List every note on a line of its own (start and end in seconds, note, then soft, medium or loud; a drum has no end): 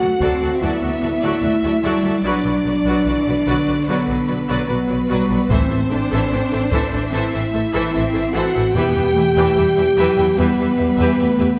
0.00 0.09 D2 soft
0.00 0.09 F#3 soft
0.00 0.21 A3 soft
0.00 0.58 F#4 medium
0.00 0.09 F#4 soft
0.00 0.08 A4 soft
0.00 0.08 D5 soft
0.00 0.57 F#5 medium
0.20 0.29 D2 soft
0.20 0.40 F#3 soft
0.20 0.61 C4 soft
0.20 0.40 F#4 soft
0.20 0.40 A4 soft
0.20 0.41 D5 medium
0.20 taiko soft
0.41 0.49 D2 soft
0.41 0.50 F#3 soft
0.41 0.50 F#4 soft
0.41 0.50 A4 soft
0.41 0.50 D5 soft
0.60 0.70 D2 soft
0.60 0.80 F#3 soft
0.60 1.43 B3 soft
0.60 2.24 E4 medium
0.60 0.80 F#4 soft
0.60 0.81 A4 soft
0.60 0.81 D5 soft
0.60 2.24 E5 soft
0.82 0.90 D2 soft
0.82 0.90 F#3 soft
0.82 0.90 F#4 soft
0.82 0.90 A4 soft
0.82 0.91 D5 soft
1.02 1.10 D2 soft
1.02 1.10 F#3 soft
1.02 1.10 F#4 soft
1.02 1.11 A4 soft
1.02 1.11 D5 soft
1.22 1.30 D2 medium
1.22 1.42 F#3 soft
1.22 1.42 F#4 medium
1.22 1.42 A4 medium
1.22 1.41 D5 medium
1.41 1.49 D2 soft
1.41 1.52 F#3 soft
1.41 1.84 A3 soft
1.41 1.52 F#4 soft
1.41 1.52 A4 soft
1.41 1.51 D5 soft
1.63 1.71 D2 soft
1.63 1.72 F#3 soft
1.63 1.72 F#4 soft
1.63 1.72 A4 soft
1.63 1.72 D5 soft
1.82 1.90 D2 soft
1.82 2.03 F#3 soft
1.82 2.24 G3 soft
1.82 2.03 F#4 soft
1.82 2.03 A4 soft
1.82 2.03 D5 medium
2.03 2.11 D2 soft
2.03 2.13 F#3 soft
2.03 2.12 F#4 soft
2.03 2.13 A4 soft
2.03 2.13 D5 soft
2.23 2.31 B1 medium
2.23 3.06 F#3 medium
2.23 2.44 F#3 medium
2.23 3.84 D4 medium
2.23 2.44 F#4 medium
2.23 2.44 B4 soft
2.23 3.83 D5 medium
2.23 2.43 D5 soft
2.44 2.52 B1 soft
2.44 2.54 F#3 soft
2.44 2.54 F#4 soft
2.44 2.53 B4 soft
2.44 2.53 D5 soft
2.64 2.72 B1 soft
2.64 2.75 F#3 soft
2.64 2.75 F#4 soft
2.64 2.74 B4 soft
2.64 2.74 D5 soft
2.84 2.92 B1 soft
2.84 3.05 F#3 soft
2.84 3.05 F#4 soft
2.84 3.04 B4 soft
2.84 3.04 D5 soft
3.05 3.13 B1 soft
3.05 3.46 E3 soft
3.05 3.14 F#3 soft
3.05 3.15 F#4 soft
3.05 3.15 B4 soft
3.05 3.15 D5 soft
3.26 3.34 B1 soft
3.26 3.36 F#3 soft
3.26 3.36 F#4 soft
3.26 3.36 B4 soft
3.26 3.36 D5 soft
3.46 3.54 B1 soft
3.46 4.69 D3 soft
3.46 3.66 F#3 soft
3.46 3.66 F#4 medium
3.46 3.65 B4 medium
3.46 3.65 D5 medium
3.67 3.76 B1 soft
3.67 3.75 F#3 soft
3.67 3.75 F#4 soft
3.67 3.76 B4 soft
3.67 3.76 D5 soft
3.86 3.95 B1 medium
3.86 4.07 F#3 soft
3.86 4.67 B3 medium
3.86 4.07 F#4 soft
3.86 4.67 B4 soft
3.86 4.07 B4 soft
3.86 4.06 D5 soft
4.07 4.16 B1 soft
4.07 4.16 F#3 soft
4.07 4.16 F#4 soft
4.07 4.16 B4 soft
4.07 4.15 D5 soft
4.28 4.37 B1 soft
4.28 4.36 F#3 soft
4.28 4.36 F#4 soft
4.28 4.37 B4 soft
4.28 4.37 D5 soft
4.49 4.57 B1 medium
4.49 4.67 F#3 soft
4.49 4.67 F#4 medium
4.49 4.68 B4 medium
4.49 4.67 D5 medium
4.68 4.78 B1 soft
4.68 5.09 F#3 soft
4.68 4.76 F#3 soft
4.68 5.48 B3 medium
4.68 4.76 F#4 soft
4.68 5.48 B4 medium
4.68 4.77 B4 soft
4.68 4.77 D5 soft
4.88 4.98 B1 soft
4.88 4.96 F#3 soft
4.88 4.96 F#4 soft
4.88 4.98 B4 soft
4.88 4.98 D5 soft
5.09 5.18 B1 medium
5.09 5.28 F#3 medium
5.09 5.50 G3 soft
5.09 5.28 F#4 medium
5.09 5.28 B4 soft
5.09 5.28 D5 soft
5.30 5.38 B1 soft
5.30 5.38 F#3 soft
5.30 5.38 F#4 soft
5.30 5.38 B4 soft
5.30 5.38 D5 soft
5.49 5.58 A1 medium
5.49 6.68 A2 medium
5.49 5.68 E3 medium
5.49 5.90 A3 medium
5.49 6.97 C4 medium
5.49 5.68 A4 soft
5.49 7.12 C5 medium
5.49 5.69 C5 soft
5.49 5.69 E5 soft
5.49 taiko soft
5.69 5.79 A1 soft
5.69 5.77 E3 soft
5.69 5.77 A4 soft
5.69 5.78 C5 soft
5.69 5.79 E5 soft
5.90 5.99 A1 soft
5.90 5.99 E3 soft
5.90 7.12 D4 soft
5.90 5.99 A4 soft
5.90 5.99 C5 soft
5.90 5.99 E5 soft
6.10 6.20 A1 medium
6.10 6.29 E3 medium
6.10 6.29 A4 soft
6.10 6.31 C5 soft
6.10 6.31 E5 soft
6.30 6.40 A1 soft
6.30 6.38 E3 soft
6.30 6.39 A4 soft
6.30 6.41 C5 soft
6.30 6.40 E5 soft
6.51 6.60 A1 soft
6.51 6.59 E3 soft
6.51 6.60 A4 soft
6.51 6.61 C5 soft
6.51 6.61 E5 soft
6.71 6.80 A1 soft
6.71 6.91 E3 medium
6.71 6.91 A4 soft
6.71 6.91 C5 medium
6.71 6.91 E5 medium
6.71 taiko soft
6.92 7.00 A1 soft
6.92 7.01 E3 soft
6.92 7.01 A4 soft
6.92 7.01 C5 soft
6.92 7.01 E5 soft
7.11 7.20 A1 medium
7.11 7.31 E3 soft
7.11 7.53 C4 soft
7.11 8.33 E4 medium
7.11 7.31 A4 soft
7.11 7.32 C5 medium
7.11 8.31 E5 soft
7.11 7.32 E5 soft
7.33 7.41 A1 soft
7.33 7.41 E3 soft
7.33 7.41 A4 soft
7.33 7.42 C5 soft
7.33 7.41 E5 medium
7.53 7.62 A1 soft
7.53 7.61 E3 soft
7.53 7.93 A3 soft
7.53 7.61 A4 soft
7.53 7.62 C5 soft
7.53 7.63 E5 soft
7.73 7.82 A1 medium
7.73 7.92 E3 medium
7.73 7.92 A4 medium
7.73 7.93 C5 medium
7.73 7.93 E5 medium
7.93 8.03 A1 soft
7.93 8.01 E3 soft
7.93 8.73 C4 soft
7.93 8.01 A4 soft
7.93 8.04 C5 soft
7.93 8.04 E5 soft
8.13 8.23 A1 soft
8.13 8.21 E3 soft
8.13 8.21 A4 soft
8.13 8.22 C5 soft
8.13 8.22 E5 soft
8.33 8.42 A1 medium
8.33 8.53 E3 medium
8.33 8.75 F#4 medium
8.33 8.53 A4 medium
8.33 8.54 C5 soft
8.33 8.54 E5 medium
8.33 8.74 F#5 soft
8.55 8.63 A1 soft
8.55 8.63 E3 soft
8.55 8.63 A4 soft
8.55 8.65 C5 soft
8.55 8.65 E5 soft
8.74 9.93 E2 medium
8.74 8.82 E2 medium
8.74 8.94 E3 medium
8.74 9.14 B3 medium
8.74 10.38 G4 medium
8.74 8.94 G4 medium
8.74 8.95 B4 medium
8.74 8.95 E5 soft
8.74 10.35 G5 medium
8.95 9.03 E2 soft
8.95 9.03 E3 soft
8.95 9.03 G4 soft
8.95 9.04 B4 soft
8.95 9.04 E5 soft
9.15 9.23 E2 soft
9.15 9.25 E3 soft
9.15 9.56 A3 medium
9.15 9.25 G4 soft
9.15 9.25 B4 soft
9.15 9.25 E5 soft
9.35 9.44 E2 medium
9.35 9.56 E3 medium
9.35 9.56 G4 medium
9.35 9.55 B4 medium
9.35 9.54 E5 soft
9.55 9.63 E2 soft
9.55 9.65 E3 soft
9.55 9.97 G3 soft
9.55 9.66 G4 soft
9.55 9.65 B4 soft
9.55 9.65 E5 soft
9.76 9.84 E2 soft
9.76 9.86 E3 soft
9.76 9.86 G4 soft
9.76 9.84 B4 medium
9.76 9.84 E5 soft
9.96 10.04 E2 soft
9.96 10.17 E3 medium
9.96 10.37 F#3 soft
9.96 10.17 G4 soft
9.96 10.16 B4 medium
9.96 10.16 E5 medium
10.16 10.24 E2 soft
10.16 10.27 E3 soft
10.16 10.26 G4 soft
10.16 10.27 B4 soft
10.16 10.26 E5 soft
10.36 10.44 E2 medium
10.36 10.57 E3 medium
10.36 11.19 G3 medium
10.36 11.59 B3 medium
10.36 10.57 G4 soft
10.36 11.59 B4 medium
10.36 10.57 B4 soft
10.36 10.57 E5 medium
10.57 10.65 E2 soft
10.57 10.67 E3 soft
10.57 10.67 G4 soft
10.57 10.66 B4 medium
10.57 10.67 E5 soft
10.77 10.85 E2 soft
10.77 10.85 B4 soft
10.77 10.85 E5 soft
10.81 10.88 E3 soft
10.81 10.89 G4 soft
10.97 11.06 E2 medium
10.97 11.17 B4 medium
10.97 11.17 E5 medium
11.01 11.19 E3 medium
11.01 11.19 G4 medium
11.18 11.26 E2 soft
11.18 11.28 E3 soft
11.18 11.59 A3 medium
11.18 11.28 G4 soft
11.18 11.26 B4 soft
11.18 11.26 E5 soft
11.38 11.46 E2 soft
11.38 11.48 E3 soft
11.38 11.47 G4 medium
11.38 11.48 B4 medium
11.38 11.48 E5 medium